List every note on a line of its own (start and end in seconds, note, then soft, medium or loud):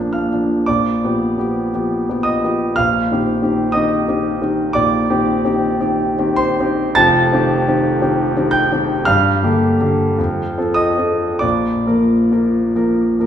0.00 0.69 A#1 medium
0.00 0.33 F3 soft
0.00 0.33 A#3 soft
0.00 0.33 D4 medium
0.00 0.70 G5 medium
0.00 0.13 G6 loud
0.13 0.64 F5 soft
0.13 0.67 F6 medium
0.33 0.65 F3 soft
0.33 0.65 A#3 soft
0.33 0.65 D4 soft
0.66 1.02 A#1 medium
0.66 2.23 D5 medium
0.66 2.26 D6 medium
1.04 1.35 F3 soft
1.04 1.35 B3 soft
1.04 1.35 G4 soft
1.38 1.70 F3 soft
1.38 1.70 B3 soft
1.38 1.71 G4 medium
1.74 2.06 F3 medium
1.74 2.06 B3 soft
1.74 2.06 G4 soft
2.09 2.41 F3 medium
2.09 2.41 B3 soft
2.09 2.41 G4 medium
2.23 2.73 D#5 medium
2.23 2.76 D#6 medium
2.44 2.74 F3 soft
2.44 2.75 B3 medium
2.44 2.75 G4 medium
2.76 3.10 A#1 medium
2.76 3.70 F5 medium
2.76 3.74 F6 medium
3.11 3.40 D#3 soft
3.11 3.40 C4 soft
3.11 3.40 G4 medium
3.42 3.71 D#3 medium
3.42 3.72 C4 soft
3.42 3.72 G4 medium
3.72 4.04 D#3 medium
3.72 4.04 C4 soft
3.72 4.05 G4 medium
3.72 4.70 D#5 medium
3.72 4.74 D#6 medium
4.08 4.38 D#3 medium
4.08 4.38 C4 medium
4.08 4.38 G4 medium
4.41 4.72 D#3 soft
4.41 4.72 C4 soft
4.41 4.72 G4 medium
4.73 5.09 A#1 medium
4.73 6.34 D5 medium
4.73 6.37 D6 loud
5.10 5.41 D#3 medium
5.10 5.41 C4 medium
5.10 5.41 G4 medium
5.45 5.76 D#3 medium
5.45 5.77 C4 medium
5.45 5.77 G4 medium
5.80 6.14 D#3 medium
5.80 6.14 C4 medium
5.80 6.14 G4 medium
6.19 6.55 D#3 medium
6.19 6.55 C4 medium
6.19 6.56 G4 medium
6.36 6.93 C5 medium
6.36 6.97 C6 loud
6.60 6.94 D#3 medium
6.60 6.95 C4 medium
6.60 6.95 G4 medium
6.95 7.32 F1 medium
6.95 7.33 F2 medium
6.95 8.49 A5 medium
6.95 8.53 A6 loud
7.33 7.64 D#3 medium
7.33 7.64 C4 medium
7.33 7.65 G4 medium
7.68 7.98 D#3 medium
7.68 7.99 C4 medium
7.68 7.99 G4 medium
8.01 8.33 D#3 medium
8.01 8.33 C4 medium
8.01 8.33 G4 medium
8.36 8.68 D#3 medium
8.36 8.68 C4 medium
8.36 8.68 G4 medium
8.51 9.02 G5 medium
8.51 9.05 G6 loud
8.72 9.04 D#3 medium
8.72 9.04 C4 medium
8.72 9.04 G4 medium
9.05 9.42 G2 medium
9.05 10.74 F5 medium
9.05 10.77 F6 loud
9.43 9.76 D3 medium
9.43 9.77 A#3 medium
9.43 9.77 G4 medium
9.80 10.15 D3 medium
9.80 10.15 A#3 medium
9.80 10.15 G4 medium
10.18 10.57 F2 medium
10.58 10.95 F3 medium
10.58 10.95 C4 medium
10.58 10.95 A4 medium
10.74 11.37 D#5 medium
10.74 11.41 D#6 medium
10.98 11.38 F3 soft
10.98 11.38 C4 medium
10.98 11.38 A4 medium
11.39 11.86 A#1 medium
11.39 13.26 D5 medium
11.39 13.26 D6 medium
11.87 12.28 F3 medium
11.87 12.29 A#3 soft
11.87 12.29 A#4 medium
12.32 12.72 F3 soft
12.32 12.72 A#3 soft
12.32 12.73 A#4 soft
12.75 13.16 F3 medium
12.75 13.16 A#3 soft
12.75 13.16 A#4 medium
13.20 13.26 F3 soft
13.20 13.26 A#3 soft
13.20 13.26 A#4 medium